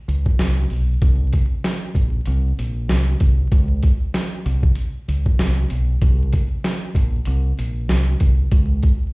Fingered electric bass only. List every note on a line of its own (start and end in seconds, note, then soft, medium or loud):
0.08 0.33 C#2 medium
0.39 0.64 C2 medium
0.71 0.95 B1 medium
1.02 1.40 C2 loud
1.95 2.20 A#1 medium
2.27 2.51 C2 loud
2.58 2.89 A#1 medium
2.89 3.14 C2 loud
3.21 3.45 C2 medium
3.52 3.90 C#2 loud
4.46 4.70 C2 medium
5.08 5.33 C#2 medium
5.39 5.64 C2 loud
5.71 5.95 B1 medium
6.02 6.40 C2 loud
6.95 7.20 A#1 loud
7.27 7.51 C2 loud
7.58 7.89 A#1 medium
7.89 8.14 C2 loud
8.21 8.45 C2 medium
8.52 8.90 C#2 loud